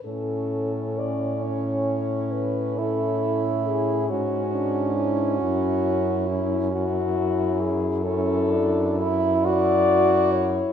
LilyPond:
<<
  \new Staff \with { instrumentName = "French horn" } { \time 12/8 \key a \major \tempo 4. = 45 a'4 d''8 cis''4 b'8 a'4 gis'8 fis'4 e'8 | fis'4 e'8 fis'4 gis'8 a'4 r8 d''4 cis''8 | }
  \new Staff \with { instrumentName = "French horn" } { \time 12/8 \key a \major cis'2. e'4. cis'4.~ | cis'2~ cis'8 r8 cis'8 d'8 e'8 fis'4. | }
  \new Staff \with { instrumentName = "French horn" } { \time 12/8 \key a \major cis'4. cis'4. cis'2 d'4 | e'4 r8 e'4. e'2. | }
  \new Staff \with { instrumentName = "French horn" } { \clef bass \time 12/8 \key a \major a,1~ a,8 gis,4. | fis,1. | }
>>